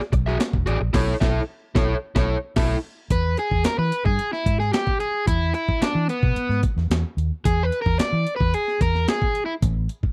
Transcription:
0.00 snare soft
0.12 0.36 B1 medium
0.12 muted overdriven electric guitar stroke soft
0.12 kick loud
0.12 closed hi-hat medium
0.26 0.37 F#4 medium
0.26 0.37 G#4 soft
0.26 0.36 E5 medium
0.26 snare soft
0.39 muted overdriven electric guitar stroke soft
0.39 snare loud
0.39 closed hi-hat medium
0.53 0.65 E1 medium
0.53 kick loud
0.66 0.79 A1 medium
0.66 0.77 F#4 medium
0.66 0.77 G#4 medium
0.66 0.77 D5 medium
0.66 closed hi-hat medium
0.81 0.93 A#1 medium
0.81 muted overdriven electric guitar stroke soft
0.93 1.12 B1 loud
0.93 1.12 E4 loud
0.93 1.13 A4 loud
0.93 1.13 C#5 loud
0.93 kick loud
0.93 snare loud
0.93 crash medium
1.21 1.40 B1 medium
1.21 1.40 E4 loud
1.21 1.40 A4 loud
1.21 1.39 E5 loud
1.21 kick medium
1.21 snare medium
1.75 1.94 B1 medium
1.75 1.94 E4 medium
1.75 1.94 A4 loud
1.75 1.94 C#5 medium
1.75 kick loud
1.75 snare loud
2.15 2.34 B1 loud
2.15 2.34 E4 medium
2.15 2.35 A4 loud
2.15 2.35 C#5 loud
2.15 kick loud
2.15 snare loud
2.56 2.75 B1 loud
2.56 2.76 E4 loud
2.56 2.75 A4 loud
2.56 2.75 E5 loud
2.56 kick loud
2.56 snare loud
2.56 crash medium
3.10 3.35 E2 loud
3.10 3.39 B4 loud
3.10 kick loud
3.10 closed hi-hat medium
3.37 3.64 G#4 loud
3.37 closed hi-hat medium
3.51 3.64 E2 medium
3.51 kick medium
3.64 3.78 A#4 medium
3.64 muted fingered electric bass stroke soft
3.64 snare loud
3.64 closed hi-hat loud
3.78 3.91 E3 medium
3.78 4.05 B4 medium
3.92 closed hi-hat medium
4.05 4.18 G2 medium
4.05 4.32 G#4 medium
4.05 kick loud
4.19 closed hi-hat medium
4.33 4.59 E4 medium
4.33 snare soft
4.46 4.70 G#2 medium
4.46 kick medium
4.46 closed hi-hat medium
4.60 4.73 G#4 medium
4.60 snare soft
4.73 5.00 G4 medium
4.73 snare loud
4.73 closed hi-hat medium
4.87 kick medium
5.00 5.27 G#4 medium
5.00 closed hi-hat medium
5.27 5.52 E2 loud
5.27 5.54 E4 loud
5.27 kick loud
5.27 closed hi-hat medium
5.54 5.83 E4 medium
5.54 closed hi-hat medium
5.68 muted fingered electric bass stroke soft
5.68 kick medium
5.82 6.09 D4 medium
5.82 muted fingered electric bass stroke soft
5.82 snare loud
5.82 closed hi-hat medium
5.95 6.08 E3 loud
6.09 6.60 B3 medium
6.09 closed hi-hat medium
6.23 6.35 B2 medium
6.23 kick loud
6.36 muted fingered electric bass stroke medium
6.36 closed hi-hat medium
6.49 6.62 G#2 medium
6.49 snare soft
6.63 kick medium
6.63 closed hi-hat medium
6.77 6.89 E2 medium
6.77 snare soft
6.90 7.03 E2 medium
6.90 snare loud
6.90 closed hi-hat medium
7.17 7.29 D#2 medium
7.17 closed hi-hat medium
7.45 7.69 E2 loud
7.45 7.63 G#4 loud
7.45 kick loud
7.45 closed hi-hat loud
7.63 7.81 B4 loud
7.72 closed hi-hat medium
7.82 7.98 A#4 loud
7.86 7.98 E2 loud
7.86 kick medium
7.99 8.36 D5 medium
7.99 muted fingered electric bass stroke soft
7.99 snare loud
7.99 closed hi-hat medium
8.13 8.25 E3 loud
8.27 closed hi-hat medium
8.36 8.54 B4 medium
8.40 8.52 E2 loud
8.40 kick medium
8.54 8.82 G#4 loud
8.54 closed hi-hat medium
8.68 snare soft
8.81 9.05 E2 loud
8.81 9.09 A#4 loud
8.81 kick medium
8.81 closed hi-hat medium
8.95 snare soft
9.08 9.42 G#4 medium
9.08 snare loud
9.08 closed hi-hat medium
9.22 kick loud
9.35 closed hi-hat medium
9.46 9.53 E4 medium
9.62 9.86 A1 loud
9.62 kick loud
9.62 closed hi-hat medium
9.89 closed hi-hat medium
10.03 muted fingered electric bass stroke medium
10.03 kick medium

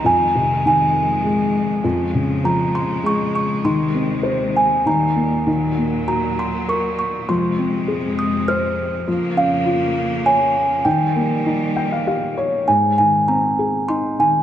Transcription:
0.00 1.80 D#3 medium
0.04 1.79 F2 medium
0.04 3.61 F2 medium
0.04 1.82 G#3 medium
0.04 0.66 G#5 medium
0.35 1.51 C3 soft
0.65 1.81 D#3 medium
0.65 1.51 G#5 medium
1.24 1.82 G#3 medium
1.84 3.60 F2 medium
1.84 3.63 C#3 medium
1.84 4.83 G#3 medium
2.14 3.31 C#3 soft
2.44 3.61 F3 medium
2.44 2.75 A#5 medium
2.75 3.05 C6 medium
3.03 3.62 G#3 medium
3.03 3.33 C#6 loud
3.35 3.66 C#6 medium
3.63 7.25 D#2 medium
3.63 4.85 C3 medium
3.63 4.84 D#3 medium
3.63 4.82 D#3 medium
3.63 4.58 C6 medium
3.95 4.83 C4 soft
4.23 4.83 C5 medium
4.57 4.70 G#5 medium
4.86 7.27 A#2 medium
4.86 5.45 D#3 medium
4.86 5.47 G3 medium
4.86 5.29 A#5 medium
5.16 5.46 A#3 soft
5.47 7.25 D#3 medium
5.47 7.27 F#3 medium
5.78 6.95 A#3 soft
6.07 7.25 F#4 soft
6.07 6.39 A#5 medium
6.39 6.53 C6 medium
6.68 7.27 A#4 medium
6.68 6.98 C#6 medium
6.99 7.30 C#6 medium
7.28 10.81 F2 medium
7.28 9.05 C3 medium
7.28 9.04 F3 medium
7.28 9.05 G#3 medium
7.28 8.15 C6 medium
7.59 8.74 C4 soft
7.88 9.04 G#4 soft
8.19 8.49 D#6 medium
8.48 9.06 C5 medium
8.48 8.90 F6 medium
9.07 10.84 C#3 medium
9.07 12.64 F3 medium
9.07 10.81 F3 medium
9.07 10.84 A#3 medium
9.37 10.52 C#4 soft
9.37 10.29 F5 medium
9.66 10.82 F4 medium
10.26 10.84 C#5 medium
10.26 10.88 G#5 loud
10.85 12.63 D#3 medium
10.85 12.66 D#3 medium
10.85 12.65 G3 medium
10.85 12.33 G5 medium
11.16 12.33 A#3 soft
11.46 12.64 D#4 soft
11.76 11.90 G5 medium
11.92 12.06 F5 medium
12.07 12.66 G4 soft
12.07 12.35 F5 medium
12.37 12.66 C#5 medium
12.68 14.43 G#2 medium
12.68 12.97 G#5 medium
12.98 14.15 D#3 soft
12.98 13.29 G#5 medium
13.28 14.43 C4 soft
13.28 13.90 A#5 medium
13.59 14.43 G#4 soft
13.89 14.43 D#4 soft
13.89 14.19 C6 loud
14.19 14.43 D#3 soft
14.19 14.43 G#5 medium

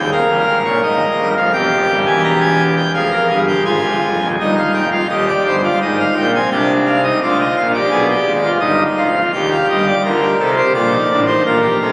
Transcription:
0.00 0.10 D#1 medium
0.00 0.10 D#2 medium
0.00 0.10 G5 medium
0.12 0.28 F1 medium
0.12 0.28 F2 medium
0.12 1.34 A#4 medium
0.12 0.58 F5 medium
0.29 0.46 G1 medium
0.29 0.45 G2 medium
0.48 0.64 G#1 medium
0.48 0.64 G#2 medium
0.64 0.81 A#1 medium
0.64 0.81 A#2 medium
0.64 0.80 C#5 medium
0.83 1.05 G#1 medium
0.83 1.05 G#2 medium
0.83 1.29 D#5 medium
1.19 1.34 G1 medium
1.19 1.34 G2 medium
1.36 1.52 F1 medium
1.36 1.51 F2 medium
1.36 1.52 F5 medium
1.53 1.69 E1 medium
1.53 1.69 E2 medium
1.53 2.75 G4 medium
1.53 1.99 G5 medium
1.70 1.86 F1 medium
1.70 1.86 F2 medium
1.90 2.05 G1 medium
1.90 2.05 G2 medium
2.06 2.82 E1 medium
2.06 2.82 E2 medium
2.06 2.22 G#5 medium
2.24 2.39 A#5 loud
2.41 2.63 G#5 medium
2.76 2.92 G5 medium
2.94 3.16 F1 medium
2.94 3.17 F2 medium
2.94 3.10 G#4 medium
2.94 3.40 F5 loud
3.12 3.27 A#4 medium
3.30 3.52 G1 medium
3.30 3.52 G2 medium
3.30 3.45 G#4 medium
3.47 3.63 G4 medium
3.47 3.63 G5 medium
3.64 3.81 G#1 medium
3.64 3.81 G#2 medium
3.64 4.27 F4 medium
3.64 4.27 G#5 loud
3.84 3.99 G1 medium
3.84 3.99 G2 medium
4.03 4.18 F1 medium
4.03 4.18 F2 medium
4.21 4.36 D#1 medium
4.21 4.36 D#2 medium
4.39 4.62 G1 medium
4.39 4.61 G2 medium
4.39 4.85 D#4 medium
4.39 4.55 D#5 medium
4.57 4.72 F5 medium
4.74 4.96 F1 medium
4.74 4.96 F2 medium
4.74 4.89 G5 medium
4.92 5.07 F4 medium
4.92 5.07 F5 medium
5.09 5.31 D#1 medium
5.09 5.32 D#2 medium
5.09 5.56 G4 medium
5.09 5.25 D#5 medium
5.28 5.43 D5 medium
5.46 5.68 G1 medium
5.46 5.68 G2 medium
5.46 5.61 C5 medium
5.63 5.79 F4 medium
5.63 5.78 D5 medium
5.81 6.03 G#1 medium
5.81 6.03 G#2 medium
5.81 6.27 D#4 medium
5.81 5.96 D#5 medium
6.00 6.14 F5 medium
6.17 6.38 A#1 medium
6.17 6.38 A#2 medium
6.17 6.31 G5 medium
6.35 6.49 C4 medium
6.35 6.49 G#5 medium
6.51 7.12 C2 medium
6.51 7.12 C3 medium
6.51 6.97 D4 medium
6.51 6.73 G5 medium
6.86 7.02 F5 medium
7.03 7.19 D#4 medium
7.03 7.19 D#5 medium
7.22 7.44 D2 medium
7.22 7.44 D3 medium
7.22 7.68 F4 medium
7.22 7.37 D5 medium
7.40 7.55 D#5 medium
7.57 7.79 A#1 medium
7.57 7.79 A#2 medium
7.57 7.72 F5 medium
7.74 7.90 G4 medium
7.74 8.50 D5 medium
7.90 8.13 B1 medium
7.90 8.13 B2 medium
7.90 8.07 G#4 medium
8.10 8.32 G4 medium
8.26 8.49 G#1 medium
8.26 8.49 G#2 medium
8.43 8.60 F4 medium
8.60 8.84 G1 medium
8.60 8.84 G2 medium
8.60 9.07 D#4 medium
8.60 8.83 D#5 medium
8.97 9.20 F1 medium
8.97 9.20 F2 medium
8.97 9.20 F5 medium
9.16 9.31 F4 medium
9.33 9.56 D#1 medium
9.33 9.56 D#2 medium
9.33 9.95 G4 medium
9.33 9.49 G5 medium
9.51 9.67 F5 medium
9.70 9.92 G1 medium
9.70 9.92 G2 medium
9.70 9.85 D#5 medium
9.87 10.02 D5 medium
10.04 10.26 D2 medium
10.04 10.26 D3 medium
10.04 10.20 F4 medium
10.04 10.50 A#4 medium
10.21 10.37 G4 medium
10.39 10.61 C2 medium
10.39 10.61 C3 medium
10.39 10.55 A4 medium
10.57 10.73 G4 medium
10.57 10.72 C5 medium
10.74 10.96 A#1 medium
10.74 10.97 A#2 medium
10.74 10.90 F4 medium
10.74 11.20 D5 medium
10.92 11.08 D#4 medium
11.10 11.32 A1 medium
11.10 11.32 A2 medium
11.10 11.26 D4 medium
11.27 11.43 D#4 medium
11.27 11.43 C5 medium
11.45 11.67 A#1 medium
11.45 11.67 A#2 medium
11.45 11.61 F4 medium
11.45 11.91 A#4 medium
11.62 11.78 G4 medium
11.80 11.92 C2 medium
11.80 11.92 C3 medium
11.80 11.92 A4 medium

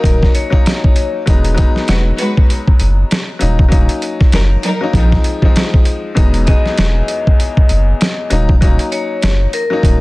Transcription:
0.00 0.27 D#1 loud
0.00 0.47 F#3 loud
0.00 0.47 A#3 medium
0.00 0.48 C#4 medium
0.00 0.48 D#4 loud
0.00 0.31 A#4 medium
0.00 kick medium
0.05 closed hi-hat medium
0.23 kick medium
0.23 snare soft
0.35 1.23 C#5 medium
0.35 closed hi-hat medium
0.50 1.21 F#3 loud
0.50 1.21 A#3 loud
0.50 1.22 C#4 medium
0.50 1.22 D#4 loud
0.50 kick medium
0.66 snare loud
0.66 closed hi-hat loud
0.84 kick medium
0.96 closed hi-hat medium
1.26 1.64 E1 loud
1.26 1.53 F#3 medium
1.26 1.54 G#3 medium
1.26 1.55 B3 medium
1.26 1.56 D#4 loud
1.26 kick loud
1.26 closed hi-hat medium
1.44 closed hi-hat medium
1.54 3.38 F#3 loud
1.54 3.40 G#3 medium
1.54 3.40 B3 medium
1.54 3.40 D#4 loud
1.54 kick medium
1.54 closed hi-hat medium
1.76 snare soft
1.88 2.12 E1 medium
1.88 2.04 G#3 loud
1.88 2.04 F#4 loud
1.88 2.04 B4 loud
1.88 snare loud
1.88 closed hi-hat medium
2.19 2.45 G#3 loud
2.19 2.45 F#4 loud
2.19 2.45 B4 loud
2.19 closed hi-hat medium
2.37 kick loud
2.50 closed hi-hat medium
2.68 kick medium
2.80 3.03 F#1 medium
2.80 closed hi-hat medium
3.11 snare loud
3.11 closed hi-hat loud
3.39 3.88 D#1 loud
3.39 3.62 F#3 medium
3.39 3.62 A#3 medium
3.39 3.63 C#4 medium
3.39 3.63 D#4 loud
3.39 closed hi-hat medium
3.59 kick loud
3.69 4.70 F#3 loud
3.69 4.71 A#3 medium
3.69 4.71 C#4 loud
3.69 4.71 D#4 loud
3.69 kick loud
3.69 closed hi-hat medium
3.89 closed hi-hat medium
4.02 closed hi-hat medium
4.21 kick loud
4.21 snare soft
4.32 4.56 F#1 loud
4.32 4.49 F#3 loud
4.32 4.49 D#4 medium
4.32 4.49 A#4 loud
4.32 snare loud
4.32 closed hi-hat medium
4.63 4.90 F#3 loud
4.63 4.90 D#4 loud
4.63 4.90 A#4 loud
4.63 closed hi-hat medium
4.81 4.94 F#3 loud
4.81 4.95 A#3 medium
4.81 4.95 C#4 medium
4.81 4.95 D#4 loud
4.93 5.17 A#1 loud
4.93 5.38 F3 loud
4.93 5.39 G#3 medium
4.93 5.39 C4 medium
4.93 5.40 D#4 loud
4.93 kick medium
4.93 closed hi-hat medium
5.12 kick medium
5.12 snare soft
5.24 closed hi-hat medium
5.42 6.11 F3 medium
5.42 6.12 G#3 medium
5.42 6.12 C4 medium
5.42 6.13 D#4 loud
5.42 kick medium
5.56 snare loud
5.56 closed hi-hat loud
5.74 kick loud
5.85 closed hi-hat medium
6.15 6.54 E1 loud
6.15 6.44 E2 medium
6.15 6.45 F#3 medium
6.15 6.45 G#3 medium
6.15 6.45 B3 medium
6.15 6.46 D#4 loud
6.15 kick loud
6.15 closed hi-hat medium
6.34 closed hi-hat medium
6.47 8.31 E2 loud
6.47 8.29 F#3 medium
6.47 8.31 G#3 medium
6.47 8.32 B3 medium
6.47 8.31 D#4 loud
6.47 8.57 D#5 medium
6.47 kick medium
6.47 closed hi-hat medium
6.66 snare soft
6.77 7.01 E1 medium
6.77 snare loud
6.77 closed hi-hat medium
7.08 closed hi-hat medium
7.27 kick loud
7.40 closed hi-hat medium
7.57 kick loud
7.69 7.93 F#1 medium
7.69 closed hi-hat medium
8.01 snare loud
8.01 closed hi-hat loud
8.30 8.77 D#1 medium
8.30 8.52 F#3 medium
8.30 8.53 A#3 medium
8.30 8.53 C#4 medium
8.30 8.54 D#4 loud
8.30 closed hi-hat medium
8.49 kick loud
8.61 9.61 F#3 loud
8.61 9.61 A#3 medium
8.61 9.62 C#4 medium
8.61 9.62 D#4 loud
8.61 kick loud
8.61 closed hi-hat medium
8.79 closed hi-hat medium
8.92 9.50 C#5 medium
8.92 closed hi-hat medium
9.22 9.46 F#1 loud
9.22 snare loud
9.22 closed hi-hat loud
9.53 10.01 A#4 medium
9.53 closed hi-hat medium
9.70 10.01 F#3 medium
9.70 10.01 A#3 medium
9.70 10.01 C#4 medium
9.70 10.01 D#4 loud
9.83 10.01 D#1 loud
9.83 kick medium
9.83 closed hi-hat medium

